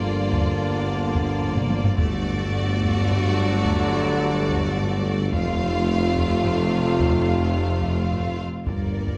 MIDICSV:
0, 0, Header, 1, 10, 480
1, 0, Start_track
1, 0, Tempo, 555556
1, 283, Time_signature, 6, 3, 24, 8
1, 7927, End_track
2, 0, Start_track
2, 0, Title_t, "Violin section"
2, 0, Program_c, 0, 48
2, 0, Note_on_c, 0, 74, 74
2, 1692, Note_off_c, 0, 74, 0
2, 1718, Note_on_c, 0, 74, 92
2, 4566, Note_off_c, 0, 74, 0
2, 4608, Note_on_c, 0, 77, 98
2, 7278, Note_off_c, 0, 77, 0
2, 7489, Note_on_c, 0, 74, 71
2, 7927, Note_off_c, 0, 74, 0
2, 7927, End_track
3, 0, Start_track
3, 0, Title_t, "Violin section"
3, 0, Program_c, 1, 48
3, 0, Note_on_c, 1, 65, 66
3, 1728, Note_off_c, 1, 65, 0
3, 1730, Note_on_c, 1, 66, 87
3, 4607, Note_off_c, 1, 66, 0
3, 4612, Note_on_c, 1, 65, 92
3, 7280, Note_off_c, 1, 65, 0
3, 7495, Note_on_c, 1, 70, 71
3, 7927, Note_off_c, 1, 70, 0
3, 7927, End_track
4, 0, Start_track
4, 0, Title_t, "French horn section"
4, 0, Program_c, 2, 60
4, 0, Note_on_c, 2, 58, 79
4, 0, Note_on_c, 2, 62, 85
4, 1569, Note_off_c, 2, 58, 0
4, 1569, Note_off_c, 2, 62, 0
4, 1716, Note_on_c, 2, 57, 103
4, 1718, Note_on_c, 2, 62, 101
4, 4565, Note_off_c, 2, 57, 0
4, 4566, Note_off_c, 2, 62, 0
4, 4609, Note_on_c, 2, 65, 117
4, 4612, Note_on_c, 2, 57, 111
4, 7212, Note_off_c, 2, 65, 0
4, 7213, Note_off_c, 2, 57, 0
4, 7927, End_track
5, 0, Start_track
5, 0, Title_t, "Viola section"
5, 0, Program_c, 3, 48
5, 0, Note_on_c, 3, 58, 67
5, 1686, Note_off_c, 3, 58, 0
5, 1720, Note_on_c, 3, 57, 82
5, 4598, Note_off_c, 3, 57, 0
5, 4608, Note_on_c, 3, 57, 85
5, 7279, Note_off_c, 3, 57, 0
5, 7484, Note_on_c, 3, 58, 66
5, 7927, Note_off_c, 3, 58, 0
5, 7927, End_track
6, 0, Start_track
6, 0, Title_t, "Trombone section"
6, 0, Program_c, 4, 61
6, 0, Note_on_c, 4, 50, 82
6, 0, Note_on_c, 4, 53, 79
6, 1689, Note_off_c, 4, 50, 0
6, 1692, Note_off_c, 4, 53, 0
6, 1731, Note_on_c, 4, 54, 97
6, 1735, Note_on_c, 4, 50, 101
6, 4452, Note_off_c, 4, 50, 0
6, 4452, Note_off_c, 4, 54, 0
6, 4599, Note_on_c, 4, 53, 102
6, 4605, Note_on_c, 4, 48, 104
6, 7207, Note_off_c, 4, 53, 0
6, 7210, Note_off_c, 4, 48, 0
6, 7927, End_track
7, 0, Start_track
7, 0, Title_t, "Cello section"
7, 0, Program_c, 5, 48
7, 0, Note_on_c, 5, 43, 70
7, 1689, Note_off_c, 5, 43, 0
7, 1727, Note_on_c, 5, 43, 90
7, 4571, Note_off_c, 5, 43, 0
7, 4607, Note_on_c, 5, 41, 96
7, 7312, Note_off_c, 5, 41, 0
7, 7486, Note_on_c, 5, 43, 77
7, 7927, Note_off_c, 5, 43, 0
7, 7927, End_track
8, 0, Start_track
8, 0, Title_t, "Double bass section"
8, 0, Program_c, 6, 48
8, 0, Note_on_c, 6, 31, 71
8, 1689, Note_off_c, 6, 31, 0
8, 1725, Note_on_c, 6, 31, 89
8, 4570, Note_off_c, 6, 31, 0
8, 4605, Note_on_c, 6, 29, 104
8, 7311, Note_off_c, 6, 29, 0
8, 7486, Note_on_c, 6, 31, 73
8, 7927, Note_off_c, 6, 31, 0
8, 7927, End_track
9, 0, Start_track
9, 0, Title_t, "Tuba"
9, 0, Program_c, 7, 58
9, 0, Note_on_c, 7, 31, 76
9, 1574, Note_off_c, 7, 31, 0
9, 1721, Note_on_c, 7, 31, 95
9, 4612, Note_on_c, 7, 29, 112
9, 4625, Note_off_c, 7, 31, 0
9, 7315, Note_off_c, 7, 29, 0
9, 7489, Note_on_c, 7, 31, 76
9, 7927, Note_off_c, 7, 31, 0
9, 7927, End_track
10, 0, Start_track
10, 0, Title_t, "Taiko and cinematic ensemble drums"
10, 278, Note_on_c, 9, 41, 100
10, 365, Note_off_c, 9, 41, 0
10, 993, Note_on_c, 9, 41, 83
10, 1079, Note_off_c, 9, 41, 0
10, 1235, Note_on_c, 9, 43, 65
10, 1321, Note_off_c, 9, 43, 0
10, 1354, Note_on_c, 9, 45, 87
10, 1441, Note_off_c, 9, 45, 0
10, 1473, Note_on_c, 9, 47, 105
10, 1560, Note_off_c, 9, 47, 0
10, 1590, Note_on_c, 9, 43, 98
10, 1677, Note_off_c, 9, 43, 0
10, 1712, Note_on_c, 9, 41, 108
10, 1799, Note_off_c, 9, 41, 0
10, 2434, Note_on_c, 9, 41, 84
10, 2520, Note_off_c, 9, 41, 0
10, 2681, Note_on_c, 9, 43, 70
10, 2767, Note_off_c, 9, 43, 0
10, 3157, Note_on_c, 9, 41, 100
10, 3243, Note_off_c, 9, 41, 0
10, 3882, Note_on_c, 9, 41, 93
10, 3968, Note_off_c, 9, 41, 0
10, 4125, Note_on_c, 9, 43, 67
10, 4211, Note_off_c, 9, 43, 0
10, 4604, Note_on_c, 9, 41, 110
10, 4690, Note_off_c, 9, 41, 0
10, 5319, Note_on_c, 9, 41, 86
10, 5405, Note_off_c, 9, 41, 0
10, 5562, Note_on_c, 9, 43, 66
10, 5648, Note_off_c, 9, 43, 0
10, 6044, Note_on_c, 9, 41, 108
10, 6131, Note_off_c, 9, 41, 0
10, 6766, Note_on_c, 9, 41, 87
10, 6853, Note_off_c, 9, 41, 0
10, 7012, Note_on_c, 9, 43, 68
10, 7099, Note_off_c, 9, 43, 0
10, 7488, Note_on_c, 9, 41, 105
10, 7574, Note_off_c, 9, 41, 0
10, 7845, Note_on_c, 9, 41, 77
10, 7927, Note_off_c, 9, 41, 0
10, 7927, End_track
0, 0, End_of_file